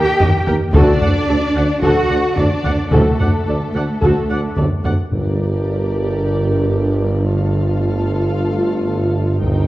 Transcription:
0.00 0.47 G4 medium
0.00 0.47 G5 medium
0.20 0.31 D#2 medium
0.20 0.29 D#2 medium
0.20 0.28 G4 medium
0.20 0.28 D#5 soft
0.20 taiko low medium
0.47 0.58 D#2 soft
0.47 0.56 D#2 medium
0.47 0.55 A#4 medium
0.47 0.55 G5 medium
0.47 taiko low soft
0.73 0.82 D2 medium
0.73 0.86 D2 medium
0.73 1.51 D3 medium
0.73 1.79 D4 medium
0.73 0.99 F#4 medium
0.73 0.94 F#4 medium
0.73 0.99 A4 medium
0.73 0.94 A4 medium
0.73 1.78 D5 medium
0.73 taiko medium
1.02 1.10 D2 medium
1.02 1.13 D2 soft
1.02 1.10 D5 soft
1.02 1.10 F#5 soft
1.02 taiko low soft
1.28 1.39 D2 medium
1.28 1.37 D2 soft
1.28 1.36 A4 soft
1.28 1.36 D5 soft
1.55 1.66 D2 soft
1.55 1.64 D2 soft
1.55 1.63 D5 medium
1.55 1.64 F#5 soft
1.82 1.93 D2 medium
1.82 1.91 D2 medium
1.82 2.37 F#4 medium
1.82 2.08 F#4 medium
1.82 2.02 F#4 medium
1.82 2.08 A4 medium
1.82 2.02 A4 medium
1.82 2.36 F#5 medium
1.82 2.37 F#5 medium
1.82 taiko medium
2.09 2.17 D2 soft
2.09 2.21 D2 soft
2.09 2.17 D5 soft
2.09 2.18 F#5 soft
2.35 2.45 D2 soft
2.35 2.48 D2 soft
2.35 2.92 D4 medium
2.35 2.44 A4 soft
2.35 2.90 D5 medium
2.35 2.92 D5 medium
2.35 2.45 D5 soft
2.35 taiko low medium
2.64 2.76 D2 soft
2.64 2.73 D2 soft
2.64 2.72 D5 soft
2.64 2.72 F#5 soft
2.64 taiko low soft
2.90 3.03 D2 medium
2.90 3.00 D2 medium
2.90 4.54 A3 medium
2.90 3.18 F#4 medium
2.90 3.12 F#4 soft
2.90 4.56 A4 medium
2.90 4.54 A4 medium
2.90 3.18 A4 medium
2.90 3.12 A4 soft
2.90 taiko medium
3.20 3.31 D2 soft
3.20 3.28 D2 soft
3.20 3.28 D5 soft
3.20 3.28 F#5 soft
3.20 taiko low soft
3.47 3.58 D2 soft
3.47 3.56 D2 soft
3.47 3.56 A4 soft
3.47 3.56 D5 soft
3.74 3.85 D2 soft
3.74 3.83 D2 soft
3.74 3.83 D5 soft
3.74 3.83 F#5 soft
4.01 4.13 D2 medium
4.01 4.11 D2 soft
4.01 4.21 F#4 soft
4.01 4.28 F#4 medium
4.01 4.21 A4 soft
4.01 4.28 A4 medium
4.01 taiko medium
4.30 4.41 D2 soft
4.30 4.38 D2 soft
4.30 4.38 D5 soft
4.30 4.38 F#5 soft
4.57 4.68 D2 soft
4.57 4.65 D2 soft
4.57 4.65 A4 soft
4.57 4.65 D5 soft
4.57 taiko low medium
4.84 4.95 D2 soft
4.84 4.93 D2 soft
4.84 4.93 D5 soft
4.84 4.92 F#5 soft
4.84 taiko low soft
5.11 9.38 G1 soft
5.11 9.39 G1 soft
5.11 5.89 G2 soft
5.11 9.38 G2 soft
5.11 7.23 D4 soft
5.11 7.24 G4 soft
5.11 7.23 A#4 soft
5.11 7.24 D5 soft
5.11 taiko soft
7.26 9.38 A3 soft
7.26 9.38 F4 soft
7.26 9.38 A4 soft
7.26 9.38 F5 soft
9.41 9.67 G1 medium
9.41 9.67 G2 medium
9.41 9.67 A#3 medium
9.41 9.67 D#4 medium
9.41 9.67 A#4 medium
9.41 9.67 G5 medium
9.41 taiko medium

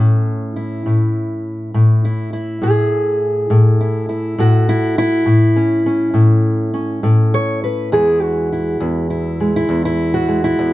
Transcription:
0.00 0.85 A2 medium
0.00 0.82 A3 soft
0.00 3.18 C#4 soft
0.56 2.04 E4 soft
0.86 1.74 A2 medium
1.74 2.61 A2 medium
2.05 2.33 E4 soft
2.33 3.80 E4 medium
2.62 3.49 A2 medium
2.62 4.39 G#4 medium
3.50 4.37 A2 medium
3.81 4.09 E4 soft
4.09 4.69 E4 medium
4.38 5.25 A2 medium
4.38 5.28 F#4 medium
4.69 4.97 E4 loud
4.98 6.75 E4 loud
5.26 6.12 A2 medium
5.56 5.85 C#4 soft
5.86 6.72 C#4 medium
6.14 7.02 A2 medium
6.74 7.88 C#4 soft
7.03 7.92 A2 medium
7.34 7.63 C#5 loud
7.64 7.93 B4 medium
7.92 8.79 E2 medium
7.92 9.39 G#3 soft
7.92 8.51 E4 medium
7.92 8.22 G#4 medium
8.22 10.13 F#4 medium
8.52 9.09 E4 soft
8.80 9.68 E2 medium
9.10 9.55 E4 soft
9.40 10.27 G#3 medium
9.56 9.84 E4 medium
9.69 10.58 E2 medium
9.85 10.43 E4 medium
10.14 10.73 F#4 medium
10.28 10.73 G#3 soft
10.44 10.73 E4 medium
10.59 10.73 E2 medium

